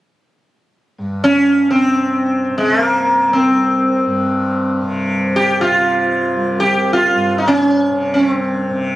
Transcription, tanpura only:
0.98 4.05 G2 soft
1.72 2.49 C3 soft
2.49 4.82 C3 soft
3.25 6.36 C2 soft
4.05 7.14 G2 soft
4.82 5.61 C3 soft
5.61 7.90 C3 soft
6.37 8.96 C2 medium
7.14 8.96 G2 medium
7.90 8.69 C3 medium
8.69 8.96 C3 medium

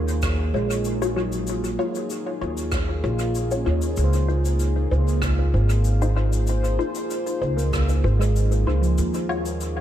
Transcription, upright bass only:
0.00 0.51 D#2 medium
0.54 1.76 A#1 medium
2.41 3.01 D#2 medium
3.04 3.64 A#1 medium
3.66 3.94 D#2 medium
3.97 4.89 C#2 medium
4.91 5.51 C#2 medium
5.54 6.76 G#1 medium
7.42 8.01 C#2 medium
8.04 8.64 G#1 medium
8.67 8.94 C#2 medium
8.98 9.81 D#2 medium

